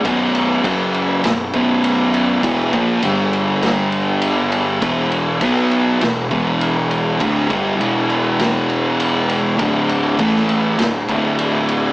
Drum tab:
RD |x-x-x-x-x-x-x-x-|x-x-x-x-x-x-x-x-|x-x-x-x-x-x-x-x-|x-x-x-x-x-x-x-x-|
SD |--------o-------|--------o-------|--------o-------|--------o-------|
BD |o---o-----o-----|o-o-----o-------|o---o-----o-----|o-o-----o-------|

RD |x-x-x-x-x-x-x-x-|
SD |-----o--o-------|
BD |o---o-----o-----|